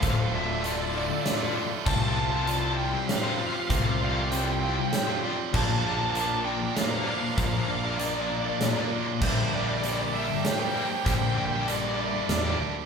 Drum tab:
CC |------|x-----|------|x-----|
HH |x-x-x-|--x-x-|x-x-x-|--x-x-|
SD |----o-|----o-|----o-|----o-|
BD |o-----|o-----|o-----|o-----|

CC |------|x-----|------|
HH |x-x-x-|--x-x-|x-x-x-|
SD |----o-|----o-|----o-|
BD |o-----|o-----|o-----|